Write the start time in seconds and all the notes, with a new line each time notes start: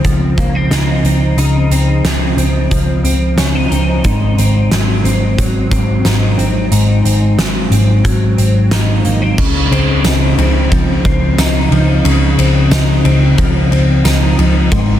Already playing: C#3 C4 D#4
0.04 C#2 F3, kick, closed hi-hat
0.38 C#2 A#3, kick, closed hi-hat
0.55 C4
0.70 C#2 D#4, snare, closed hi-hat
1.04 C#2 C4, closed hi-hat
1.37 C#2 C#3 D#4, closed hi-hat
1.70 C#2 C4, closed hi-hat
2.04 C#2 F3, snare, closed hi-hat
2.37 C#2 C4, closed hi-hat
2.71 C#2 F3, kick, closed hi-hat
3.03 C#2 C4, closed hi-hat
3.36 C#2 C#4, snare, closed hi-hat
3.55 D#4
3.71 C#2 C4, closed hi-hat
4.04 G#1 G#2 D#4, kick, closed hi-hat
4.38 G#1 C4, closed hi-hat
4.71 G#1 F#3, snare, closed hi-hat
5.04 G#1 C4, closed hi-hat
5.38 G#1 F#3, kick, closed hi-hat
5.71 G#1 C4, kick, closed hi-hat
6.05 G#1 D#4, snare, closed hi-hat
6.38 G#1 C4, closed hi-hat
6.71 G#1 G#2 D#4, closed hi-hat
7.05 G#1 C4, closed hi-hat
7.38 G#1 F#3, snare, closed hi-hat
7.71 G#1 C4, closed hi-hat
8.04 G#1 F#3, kick, closed hi-hat
8.37 G#1 C4, closed hi-hat
8.71 G#1 D#4, snare, closed hi-hat
9.05 G#1 A#3, closed hi-hat
9.22 C4
9.38 C#2 C#3, kick, crash
9.71 C#2 C4, ride
10.04 C#2 D#4, snare, ride, tambourine
10.38 C#2 C4, ride
10.72 C#2 F3, kick, ride
11.05 C#2 C4, kick, ride
11.38 C#2 D#4, snare, ride, tambourine
11.71 C#2 F3, ride
12.05 C#2 C#3, ride
12.38 C#2 C4, ride
12.71 C#2 D#4, snare, ride, tambourine
13.05 C#2 C4, ride
13.38 C#2 F3, kick, ride
13.71 C#2 C4, ride
14.04 C#2 D#4, snare, ride, tambourine
14.38 C#2 F3, ride
14.71 G#1 G#2, kick, ride